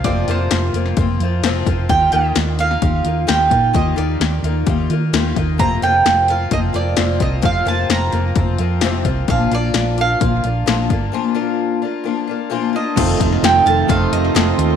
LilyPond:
<<
  \new Staff \with { instrumentName = "Mandolin" } { \time 4/4 \key f \mixolydian \tempo 4 = 130 d''8 c''2 r4. | g''8 ees''4 f''4. g''4 | ees''8 d''2 r4. | bes''8 g''4 f''8 ees''8 d''4 ees''8 |
f''8 a''8 bes''2 r4 | f''8 d''4 f''2~ f''8~ | f''2. r8 ees''8~ | ees''4 g''8 a''8 f''8 ees''8 ees''4 | }
  \new Staff \with { instrumentName = "String section" } { \time 4/4 \key f \mixolydian r1 | r1 | r1 | r1 |
r1 | r1 | r1 | <ees' f' a' c''>1 | }
  \new Staff \with { instrumentName = "Twelve-string acoustic guitar" } { \time 4/4 \key f \mixolydian <f, c f bes c' f'>8 <f, c f bes c' f'>4 <f bes c' f'>8 <f bes c' f'>8 <f bes c' f'>8 <f, c f bes c' f'>8 <f bes c' f'>8 | <ees g bes ees' f'>8 <ees g bes ees' f'>4 <bes ees' f'>8 <g bes ees' f'>8 <bes ees' f'>8 <ees g bes ees' f'>8 <bes ees' f'>8 | <ees g bes ees' f'>8 <ees g bes ees' f'>4 <bes ees' f'>8 <g bes ees' f'>8 <bes ees' f'>8 <ees g bes ees' f'>8 <bes ees' f'>8 | <f, c f bes c' f'>8 <f, c f bes c' f'>4 <f bes c' f'>8 <f bes c' f'>8 <f bes c' f'>8 <f, c f bes c' f'>8 <f bes c' f'>8 |
<f, c f bes c' f'>8 <f, c f bes c' f'>4 <f bes c' f'>8 <f bes c' f'>8 <f bes c' f'>8 <f, c f bes c' f'>8 <f bes c' f'>8 | <bes, f bes d' f'>8 <bes, f bes d' f'>4 <bes d' f'>8 <f bes d' f'>8 <bes d' f'>8 <bes, f bes d' f'>8 <bes d' f'>8 | <bes, f bes d' f'>8 <bes, f bes d' f'>4 <bes d' f'>8 <f bes d' f'>8 <bes d' f'>8 <bes, f bes d' f'>8 <bes d' f'>8 | <f, c ees a ees' f'>8 <ees a ees' f'>8 <ees a ees' f'>8 <ees a ees' f'>8 <f, c ees a ees' f'>4 <ees a ees' f'>4 | }
  \new Staff \with { instrumentName = "Clean electric guitar" } { \time 4/4 \key f \mixolydian r1 | r1 | r1 | r1 |
r1 | r1 | r1 | <f, c ees a c' f'>8 <ees a c' f'>8 <ees a c' f'>4 <f, c ees a c' f'>8 <ees a c' f'>8 <ees a c' f'>8 <ees a c' f'>8 | }
  \new Staff \with { instrumentName = "Fingered electric bass" } { \clef bass \time 4/4 \key f \mixolydian f,,8 f,,8 f,,8 f,,8 f,,8 f,8 f,,8 f,,8 | ees,8 ees,8 ees,4 ees,8 ees,8 ees,8 bes,8 | ees,8 ees,8 ees,8 ees,8 ees,8 ees8 ees,8 ees,8 | f,,8 f,,8 f,,4 f,,8 f,,8 f,,8 c,8 |
f,,8 f,,8 f,,8 f,,8 f,,8 f,8 f,,8 c,8 | bes,,8 bes,,8 bes,,4 bes,,8 bes,,8 bes,,8 g,,8 | r1 | f,,8 f,,8 f,,8 f,,8 f,,8 f,,8 f,,8 ees,8 | }
  \new DrumStaff \with { instrumentName = "Drums" } \drummode { \time 4/4 <hh bd>8 hh8 <hh sn>8 hh16 sn16 <hh bd>8 hh8 <hh sn>8 <hh bd>8 | <hh bd>8 hh8 <hh sn>8 <hh sn>16 sn16 <hh bd>8 hh8 <hh sn>8 <hh bd>8 | <hh bd>8 hh8 <hh sn>8 hh8 <hh bd>8 hh8 <hh sn>8 <hh bd>8 | <hh bd>8 hh8 <hh sn>8 hh8 <hh bd>8 hh8 <hh sn>8 <hh bd>8 |
<hh bd>8 hh8 <hh sn>8 <hh sn>8 <hh bd>8 hh8 <hh sn>8 <hh bd>8 | <hh bd>8 hh8 <hh sn>8 hh8 <hh bd>8 hh8 <hh sn>8 <hh bd>8 | r4 r4 r4 r4 | <cymc hh bd>8 <hh bd>16 sn16 <hh sn>8 hh8 <hh bd>8 hh16 sn16 <hh sn>8 hh8 | }
>>